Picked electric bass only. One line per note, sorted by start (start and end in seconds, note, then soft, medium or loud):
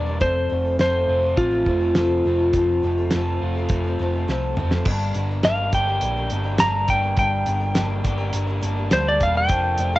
0.00 0.18 E1 medium
0.21 0.46 F1 medium
0.51 0.76 F1 medium
0.80 1.05 F1 medium
1.08 1.34 F1 medium
1.37 1.63 A1 medium
1.67 1.92 F1 medium
1.96 2.21 F1 medium
2.25 2.50 F1 medium
2.54 2.79 F1 medium
2.84 3.08 F1 medium
3.13 3.38 F1 medium
3.42 3.67 F1 medium
3.70 3.95 F1 medium
4.00 4.25 F1 medium
4.29 4.54 C2 medium
4.58 4.83 F1 medium
4.86 5.11 G1 medium
5.16 5.40 G1 medium
5.44 5.69 G1 medium
5.73 5.98 G1 medium
6.03 6.28 A#1 medium
6.32 6.57 G1 medium
6.60 6.85 G1 medium
6.89 7.14 G1 medium
7.17 7.43 G1 medium
7.48 7.73 G1 medium
7.76 8.01 G1 medium
8.05 8.30 G1 medium
8.34 8.59 G1 medium
8.63 8.88 G1 medium
8.92 9.17 D2 medium
9.21 9.46 E1 medium
9.49 9.75 F1 medium
9.78 9.99 F1 medium